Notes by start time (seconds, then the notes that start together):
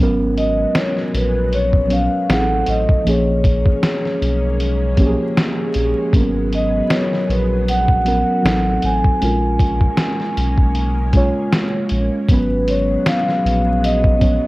Already playing: G#1 B3
0.00 F#3 G#3 B3 C#4 A#4
0.38 D#5, closed hi-hat
0.75 C#5, snare, closed hi-hat
0.97 snare
1.14 A#1 B4, closed hi-hat
1.52 C#5, closed hi-hat
1.73 kick
1.88 F#3 B3 C#4 C#5, closed hi-hat
1.93 F5
2.29 A1 F#3 A3 C4 D#4 F#5, snare, closed hi-hat
2.33 G#4
2.39 A4
2.67 A1 D#5, closed hi-hat
2.89 kick
3.05 A#1 F3 G#3 A#3 C#4 G#4 C#5, closed hi-hat
3.44 kick, closed hi-hat
3.66 kick
3.83 snare, closed hi-hat
4.05 snare
4.22 B1, closed hi-hat
4.60 closed hi-hat
4.97 F3 A#3 C#4 G4, kick, closed hi-hat
5.07 G#4
5.37 snare, closed hi-hat
5.74 A#1, closed hi-hat
6.13 G#1 F#3 A#3 B3 C#4 A#4, kick, closed hi-hat
6.20 B3
6.52 D#5, closed hi-hat
6.90 C#5, snare, closed hi-hat
7.13 snare
7.29 A#1 B4, closed hi-hat
7.68 F#5, closed hi-hat
7.88 kick
8.04 F#3 B3 C#4 A#4, closed hi-hat
8.42 A1 F#3 A3 B3 C4 D#4 A4, snare, closed hi-hat
8.50 C4
8.82 A1 G#5, closed hi-hat
9.04 kick
9.21 A#1 G#3 A#3 C#4 F4 A#4, closed hi-hat
9.59 kick, closed hi-hat
9.81 kick
9.97 snare, closed hi-hat
10.20 snare
10.37 B1, closed hi-hat
10.58 kick
10.75 closed hi-hat
11.13 G#3 C#4 F4 C#5, kick, closed hi-hat
11.53 snare, closed hi-hat
11.89 A#1, closed hi-hat
12.28 G#1 F#3 G#3 B3 C#4 B4, kick, closed hi-hat
12.33 B4
12.68 C#5, closed hi-hat
13.06 F5, snare, closed hi-hat
13.28 snare
13.45 A#1, closed hi-hat
13.84 D#5, closed hi-hat
14.04 kick
14.19 F#3 B3 C#4 C#5, kick, closed hi-hat